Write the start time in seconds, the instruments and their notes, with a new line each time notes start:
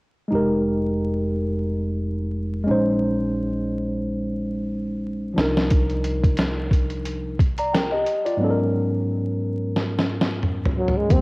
0.28 tine electric piano G#3 D#4
0.32 upright bass F1, tine electric piano G4 A#4
2.64 upright bass A#1, tine electric piano G#3 C#4
2.69 tine electric piano D#4 C5
5.34 upright bass C2, tine electric piano F3 D4, snare
5.39 tine electric piano D#4 A#4
5.57 snare
5.70 kick, closed hi-hat
5.89 closed hi-hat
6.04 closed hi-hat
6.23 kick, closed hi-hat
6.37 snare, closed hi-hat
6.71 kick, closed hi-hat
6.90 closed hi-hat
7.05 closed hi-hat
7.39 kick, closed hi-hat
7.58 tine electric piano D5 A#5, closed hi-hat
7.74 tine electric piano A#4 G5, snare, closed hi-hat
7.92 tine electric piano G4 D#5
8.07 closed hi-hat
8.26 tine electric piano F4 D5, closed hi-hat
8.37 tine electric piano G#2 F#3 B3
8.42 tine electric piano C#4 A4
8.50 tine electric piano A#4
9.76 snare
9.99 snare
10.21 snare
10.43 mid tom
10.65 floor tom
10.78 trombone F#3
10.88 floor tom
10.97 trombone G#3
11.08 upright bass F1, tine electric piano D#3 G3 A#3 G4, trombone C4, kick, closed hi-hat
11.16 tine electric piano G#3